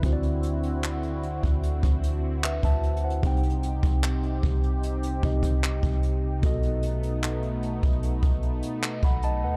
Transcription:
0.02 D2 D3 C4 E4 F#4, kick, closed hi-hat
0.06 C5
0.13 D5
0.23 closed hi-hat
0.43 closed hi-hat
0.63 closed hi-hat
0.83 clap, closed hi-hat
1.03 closed hi-hat
1.23 closed hi-hat
1.43 D2, kick, closed hi-hat
1.63 closed hi-hat
1.83 D2, kick, closed hi-hat
2.04 closed hi-hat
2.43 B4 E5, clap, closed hi-hat
2.63 D2 E5 A5, kick, closed hi-hat
2.83 closed hi-hat
2.97 closed hi-hat
3.04 C5 F#5
3.10 closed hi-hat
3.23 C2 C3 C4 D#4 G4, kick, closed hi-hat
3.27 G5
3.37 closed hi-hat
3.43 closed hi-hat
3.50 closed hi-hat
3.63 closed hi-hat
3.83 C2, kick, closed hi-hat
4.03 clap, closed hi-hat
4.23 closed hi-hat
4.43 C2, kick, closed hi-hat
4.63 closed hi-hat
4.83 closed hi-hat
5.03 closed hi-hat
5.23 C2 C3 C4 D#4 G4 D#5, kick, closed hi-hat
5.43 kick, closed hi-hat
5.63 clap, closed hi-hat
5.83 C2, kick, closed hi-hat
6.03 closed hi-hat
6.42 B1 B2 A3 B3 F#4 A4, kick, closed hi-hat
6.46 D#5
6.63 closed hi-hat
6.83 closed hi-hat
7.03 closed hi-hat
7.23 clap, closed hi-hat
7.43 closed hi-hat
7.63 closed hi-hat
7.83 B1, kick, closed hi-hat
8.03 closed hi-hat
8.23 B1, kick, closed hi-hat
8.43 closed hi-hat
8.63 closed hi-hat
8.82 clap, closed hi-hat
9.03 B1 F#5 B5, kick, closed hi-hat
9.23 D#5 A5, closed hi-hat
9.43 D#2 B4 F#5

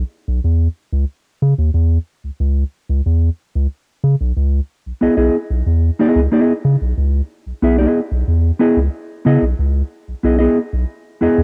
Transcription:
0.28 B1
0.44 E2
0.93 C#2
1.42 C#3
1.58 D#2
1.74 E2
2.24 C#2
2.40 C#2
2.89 C#2
3.06 E2
3.55 C#2
4.04 C#3
4.21 B1
4.37 C#2
4.86 B1
5.01 B1 B3 E4 G#4 D#5
5.17 B1 B3 E4 G#4 D#5
5.50 B1
5.66 E2
5.99 B3 E4 G#4 D#5
6.16 C#2
6.32 B3 E4 G#4 D#5
6.65 C#3
6.81 B1
6.98 C#2
7.46 B1
7.62 B1 B3 E4 G#4 E5
7.79 B3 E4 G#4 D#5
8.12 B1
8.28 E2
8.59 B3 E4 G#4 D#5
8.77 C#2
9.25 C#3 B3 E4 G#4 D#5
9.42 B1
9.59 C#2
10.08 B1
10.23 B1 B3 E4 G#4 D#5
10.38 B3 E4 G#4 D#5
10.73 B1
11.21 E2 B3 E4 G#4 D#5
11.38 E2

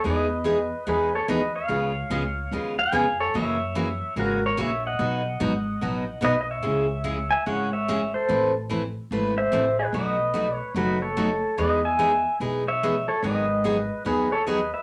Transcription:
0.04 E2 E3 G#3 B3 D#4 G#4 B4 D#5
0.44 E3 G#3 B3 D#4 G#4
0.87 E2 E3 G#3 B3 D#4 G#4 B4
1.15 A4 C#5
1.28 D#2 E3 G#3 B3 D#4 G#4 B4 D#5
1.55 C#5 F5
1.68 C#2 C#3 G#3 B3 F4 G#4
2.10 C#2 C#3 G#3 B3 F4 G#4
2.51 D#2 C#3 G#3 B3 F4 G#4
2.79 F5 G#5
2.92 F2 C#3 G#3 B3 F4 G#4
3.20 A4 C#5
3.34 F#2 C#3 E3 A#3 C#4 F#4 C#5 E5
3.75 C#3 E3 A#3 C#4 F#4
4.16 G#1 C#3 E3 A#3 C#4 F#4 A#4
4.46 A#4 C#5
4.57 A#1 C#3 E3 A#3 C#4 F#4 C#5 E5
4.87 D#5 F#5
4.99 B1 B2 F#3 B3 D#4 F#4
5.40 G#1 B2 F#3 B3 D#4 F#4
5.81 A1 B2 F#3 B3 D#4 F#4
6.21 B1 B2 F#3 B3 D#4 F#4 B4 D#5
6.41 D#5
6.51 C#5 E5
6.63 C#2 C#3 G#3 C#4 E4 G#4
7.04 C#3 G#3 C#4 E4 G#4
7.31 E5 G#5
7.46 G#1 C#3 G#3 C#4 E4 G#4 C#5 F#5
7.73 C#5 E5
7.88 C#3 G#3 C#4 E4 G#4
8.14 A4 C5
8.29 A1 E3 A3 C4 E4 B4
8.69 E3 A3 C4 E4 B4
9.11 G#1 E3 A3 C4 E4 B4
9.38 C5 E5
9.52 A1 E3 A3 C4 E4 B4
9.79 G#4 B4
9.93 B1 B2 F#3 A3 D#4 F#4 B4 D#5
10.34 B2 F#3 A3 D#4 F#4
10.56 C#5
10.74 F#1 B2 F#3 A3 D#4 F#4 B4
11.02 A4 C#5
11.17 B2 F#3 A3 D#4 F#4
11.57 E2 E3 G#3 B3 D#4 G#4 B4 D#5
11.85 E5 G#5
11.99 E3 G#3 B3 D#4 G#4
12.40 B1 E3 G#3 B3 D#4 G#4
12.68 C#5 E5
12.83 E3 G#3 B3 D#4 G#4
13.08 A4 C#5
13.23 G#1 D#3 F#3 B3 D#4 G#4 B4 D#5
13.64 D#3 F#3 B3 D#4 G#4
14.05 D#2 D#3 F#3 B3 D#4 G#4 B4
14.32 A4 C#5
14.47 D#3 F#3 B3 D#4 G#4 B4 D#5
14.74 B4 E5

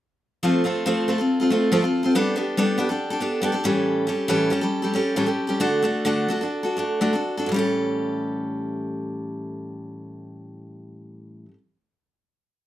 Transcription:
0.43 F3 A3 C4 F4 A4
0.64 A3 C4 F4 A4
0.86 F3 A3 C4 F4 A4
1.08 A3 C4 F4 A4
1.18 C4 F4 A4
1.40 C4 F4 A4
1.50 A3 C4 F4 A4
1.72 F3 A3 C4 F4 A4
1.82 C4 F4 A4
2.03 C4 F4 A4
2.15 G3 B3 D4 G4 A4
2.36 B3 D4 G4 A4
2.57 G3 B3 D4 G4 A4
2.78 B3 D4 G4 A4
2.89 D4 G4 A4
3.10 D4 G4 A4
3.20 B3 D4 G4 A4
3.42 G3 B3 D4 G4 A4
3.52 D4 G4 A4
3.64 A2 E3 G3 C#4 G4 A4
4.07 G3 C#4 G4 A4
4.28 A2 E3 G3 C#4 G4 A4
4.50 G3 C#4 G4 A4
4.61 G3 C#4 G4 A4
4.82 G3 C#4 G4 A4
4.94 G3 C#4 G4 A4
5.16 A2 E3 G3 C#4 G4 A4
5.26 G3 C#4 G4 A4
5.47 G3 C#4 G4 A4
5.60 D3 A3 D4 F#4 A4
5.82 A3 D4 F#4 A4
6.05 D3 A3 D4 F#4 A4
6.29 A3 D4 F#4 A4
6.41 D4 F#4 A4
6.63 D4 F#4 A4
6.77 A3 D4 F#4 A4
7.01 D3 A3 D4 F#4 A4
7.13 D4 F#4 A4
7.37 D4 F#4 A4
7.46 A2 E3
7.52 G3 C#4
7.56 G4 A4

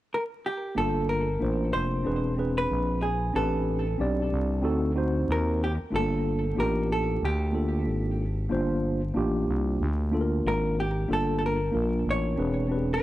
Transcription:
0.14 A#4
0.46 G4
0.75 G1 A#3 D4 F4 A4
1.09 A#4
1.39 A1 A#3 D4 F4 C5
1.73 F1 C5
2.04 E1 C4 D4 G#4 B4
2.37 C4 D4 G#4 B4
2.58 B4
2.70 A#1
3.02 G#4
3.33 A1 C4 D4 G4 A4 B4
3.98 B1 C4 D4 G4 D5
4.31 C2
4.62 D2 C4 D#4 F#4 A4
4.94 C4 D#4 F#4 C5
5.28 D#2 A#4
5.64 G4
5.80 D#2
5.90 G1 A3 D4 F4 A4
5.96 A#3 A4
6.55 A1 A#3 D4 F4 G4
6.60 A#4
6.92 A4
7.22 D2 G4
7.52 A#3 D4 F4 A4
7.86 G#1
8.49 G1 A#3 D4 F4 C5
9.14 A1 A#3 D4 F4 G4
9.48 C2
9.80 D2
10.11 A#3 D4 F4 A4
10.21 A#4
10.44 G#1 A#4
10.80 G4
11.08 G1 A#3 D4 F4 A4
11.13 A4
11.39 A4
11.46 A#4
11.71 A#1 A#3 D4 F4 A#4
12.05 A1
12.11 C#5
12.36 E1 C4 D4 G#4 B4
12.68 C4 D4 G4 B4
12.77 G#4
12.94 B4

